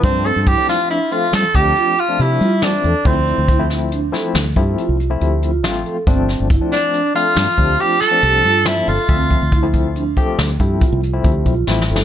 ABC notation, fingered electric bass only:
X:1
M:7/4
L:1/16
Q:1/4=139
K:Dm
V:1 name="Fingered electric bass" clef=bass
G,,3 G,,2 z6 z G, z D,,2 z4 C,2 G,4 E,, z | D,,3 D,,8 z D,,2 G,,2 z C,,3 D,,4 A,,,2 z2 | G,,,3 G,,,2 z6 z G,, z D,,2 z4 C,,2 G,,4 G,,, z | D,,3 D,,8 z D,,2 G,,2 z C,,3 D,,2 =B,,,2 A,,,2 G,,,2 |]